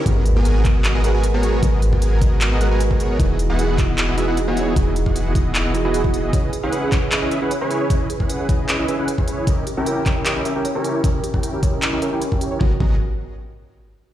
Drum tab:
HH |x-x-x-x-x-x-x-x-|x-x-x-x-x-x-x-x-|x-x-x-x-x-x-x-x-|x-x-x-x-x-x-x-x-|
CP |------x-x-------|--------x-------|------x-x-------|--------x-------|
BD |o-----o---------|o--o--o------o--|o-----o---------|o--o--o------o--|

HH |x-x-x-x-x-x-x-x-|x-x-x-x-x-x-x-x-|x-x-x-x-x-x-x-x-|x-x-x-x-x-x-x-x-|
CP |------x-x-------|--------x-------|------x-x-------|--------x-------|
BD |o-----o---------|o--o--o------o--|o-----o---------|o--o--o------o--|

HH |----------------|
CP |----------------|
BD |o-o-------------|